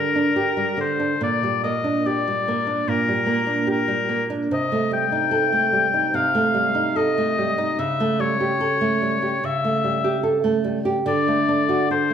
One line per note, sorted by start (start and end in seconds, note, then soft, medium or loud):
0.00 0.29 D3 soft
0.00 0.80 A#4 soft
0.15 0.50 D4 soft
0.36 0.71 G4 soft
0.57 0.92 G3 soft
0.77 1.13 D3 soft
0.77 1.22 C5 medium
1.00 1.22 D4 soft
1.21 2.83 A#2 soft
1.21 1.63 D5 medium
1.43 1.77 G3 soft
1.64 1.98 A#3 soft
1.64 2.08 D#5 medium
1.84 2.18 D4 soft
2.06 2.39 G4 soft
2.06 2.90 D5 medium
2.27 2.60 G3 soft
2.48 2.80 A#3 soft
2.67 3.00 D4 soft
2.88 4.48 A#2 soft
2.88 3.70 A#4 medium
3.08 3.41 G3 soft
3.26 3.60 A#3 soft
3.47 3.81 D4 soft
3.67 4.01 G4 soft
3.67 4.25 A#4 medium
3.88 4.22 G3 soft
4.09 4.43 A#3 soft
4.30 4.51 D4 soft
4.51 6.10 C3 soft
4.51 4.91 D#5 medium
4.72 5.05 A3 soft
4.91 5.24 G3 soft
4.91 6.17 G5 medium
5.12 5.45 D#4 soft
5.31 5.65 A4 soft
5.52 5.85 A3 soft
5.73 6.05 G3 soft
5.94 6.26 D#4 soft
6.14 7.75 C3 soft
6.14 6.98 F5 medium
6.35 6.67 A3 soft
6.54 6.88 G3 soft
6.75 7.08 D#4 soft
6.96 7.29 A4 soft
6.96 7.80 D#5 medium
7.18 7.51 A3 soft
7.38 7.71 G3 soft
7.58 7.79 D#4 soft
7.79 9.39 C#3 soft
7.79 8.22 E5 medium
8.00 8.33 A3 soft
8.19 8.53 G3 soft
8.19 9.46 C#5 medium
8.40 8.73 G4 soft
8.61 8.94 A4 soft
8.81 9.14 A3 soft
9.02 9.35 G3 soft
9.22 9.55 G4 soft
9.43 11.03 C#3 soft
9.43 10.26 E5 medium
9.64 9.97 A3 soft
9.84 10.17 G3 soft
10.04 10.37 G4 soft
10.23 10.57 A4 soft
10.44 10.78 A3 soft
10.64 10.98 G3 soft
10.85 11.07 G4 soft
11.06 12.13 D3 medium
11.06 11.87 D5 medium
11.28 11.62 A3 soft
11.48 11.82 D4 soft
11.69 11.90 F#4 soft
11.91 12.13 A4 soft
11.91 12.13 C5 medium
12.10 12.13 A3 soft